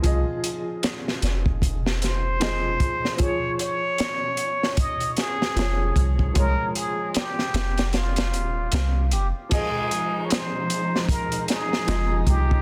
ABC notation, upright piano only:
X:1
M:4/4
L:1/8
Q:"Swing 16ths" 1/4=76
K:Fm
V:1 name="Upright piano"
[F,FAe]6 [F,FAe]2 | [F,FAd]6 [F,FAd]2 | [F,A,Fd]6 z2 | [F,FAe]6 [F,A,Fe]2 |]